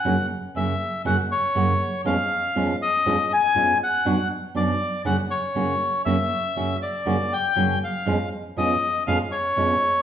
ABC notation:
X:1
M:4/4
L:1/8
Q:1/4=120
K:F#phr
V:1 name="Bandoneon"
f z e2 f c3 | ^e3 ^d2 ^g2 f- | f z d2 f c3 | e3 d2 g2 ^e- |
^e z ^d2 e c3 |]
V:2 name="Nylon-string guitar" clef=bass
[F,,C,F,^A,CF] z [F,,C,F,A,CF] z [F,,C,F,A,CF] z [F,,C,F,A,CF] z | [^E,,B,,^E,^G,C^E] z [E,,B,,E,G,CE] z [E,,B,,E,G,CE] z [E,,B,,E,G,CE] z | [F,,B,,F,B,DF] z [F,,B,,F,B,DF] z [F,,C,F,^A,CF] z [F,,C,F,A,CF] z | [F,,C,F,^A,CF] z [F,,C,F,A,CF] z [F,,C,F,A,CF] z [F,,C,F,A,CF] z |
[^E,,B,,^E,^G,C^E] z [E,,B,,E,G,CE] z [E,,B,,E,G,CE] z [E,,B,,E,G,CE] z |]